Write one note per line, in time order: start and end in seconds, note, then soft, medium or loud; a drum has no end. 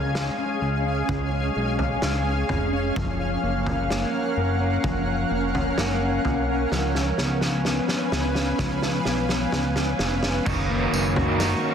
0.00 0.30 C#2 loud
0.00 0.13 G#3 medium
0.00 0.37 C#4 medium
0.00 10.43 C#4 medium
0.00 2.93 G#4 medium
0.00 6.67 F5 medium
0.00 2.92 G#5 medium
0.15 0.60 G#3 medium
0.15 snare medium
0.38 0.84 C#4 medium
0.61 1.03 C#2 medium
0.61 1.07 G#3 medium
0.85 1.32 C#4 medium
1.09 1.50 C#2 loud
1.09 1.55 G#3 medium
1.09 kick medium
1.09 floor tom medium
1.33 1.78 C#4 soft
1.56 1.98 B1 medium
1.56 2.01 G#3 medium
1.79 2.26 C#4 medium
1.79 floor tom medium
2.02 2.44 C#2 loud
2.02 2.48 G#3 medium
2.02 snare medium
2.26 2.72 C#4 soft
2.49 2.91 F1 medium
2.49 3.06 G#3 medium
2.49 floor tom medium
2.73 3.19 C#4 medium
2.96 3.38 F#1 medium
2.96 4.83 F3 medium
2.96 6.68 A#4 medium
2.96 6.68 F#5 medium
2.96 kick loud
2.96 floor tom loud
3.20 3.65 C#4 medium
3.43 4.05 F#1 medium
3.43 3.89 A#3 medium
3.66 4.13 C#4 medium
3.66 floor tom medium
3.90 4.36 A#3 medium
3.90 snare medium
4.14 4.60 C#4 medium
4.37 4.78 F#1 medium
4.37 5.29 A#3 medium
4.60 5.06 C#4 medium
4.84 5.25 F#1 loud
4.84 6.71 F3 medium
4.84 kick medium
4.84 floor tom medium
5.07 5.54 C#4 soft
5.30 5.72 F1 medium
5.30 5.76 A#3 medium
5.54 6.01 C#4 medium
5.54 floor tom medium
5.78 6.19 F#1 medium
5.78 6.24 A#3 medium
5.78 snare medium
6.01 6.48 C#4 soft
6.25 6.67 B1 medium
6.25 6.81 A#3 medium
6.25 floor tom medium
6.48 6.95 C#4 medium
6.71 7.13 C#2 loud
6.71 8.58 F3 medium
6.71 10.43 B4 medium
6.71 10.43 F5 medium
6.71 10.43 G#5 medium
6.71 snare soft
6.95 7.42 C#4 medium
6.95 snare soft
7.18 7.81 C#2 medium
7.18 7.65 B3 medium
7.18 snare soft
7.41 7.89 C#4 medium
7.41 snare soft
7.65 8.11 B3 soft
7.65 snare medium
7.88 8.35 C#4 soft
7.88 snare soft
8.12 8.54 C#2 medium
8.12 9.05 B3 medium
8.12 snare medium
8.35 8.82 C#4 medium
8.35 snare medium
8.59 9.00 C#2 loud
8.59 10.46 F3 medium
8.59 kick medium
8.59 snare medium
8.82 9.29 C#4 soft
8.82 snare medium
9.05 9.47 B1 medium
9.05 9.52 B3 medium
9.05 snare medium
9.29 9.76 C#4 medium
9.29 snare medium
9.52 9.94 C#2 loud
9.52 9.98 B3 medium
9.52 snare medium
9.76 10.23 C#4 medium
9.76 snare medium
9.99 10.41 F1 medium
9.99 10.56 B3 soft
9.99 snare medium
10.23 10.92 C#4 medium
10.23 snare medium
10.46 10.88 F#1 loud
10.46 11.74 D#3 medium
10.46 11.74 F#3 medium
10.46 11.38 A#3 medium
10.46 11.40 D#4 medium
10.46 11.74 A#4 medium
10.46 11.40 A#4 medium
10.46 11.43 C#5 medium
10.46 11.74 D#5 medium
10.46 11.74 F#5 medium
10.46 11.74 C#6 medium
10.46 kick loud
10.46 floor tom loud
10.46 crash loud
10.46 tambourine medium
10.70 11.38 A#3 medium
10.93 11.55 F#1 loud
10.93 11.62 C#4 medium
10.93 tambourine medium
11.16 11.74 F#4 medium
11.16 floor tom medium
11.39 11.74 A#3 medium
11.39 11.74 D#4 medium
11.39 11.74 A#4 medium
11.39 snare medium
11.39 tambourine medium
11.43 11.74 C#5 medium
11.63 11.74 C#4 medium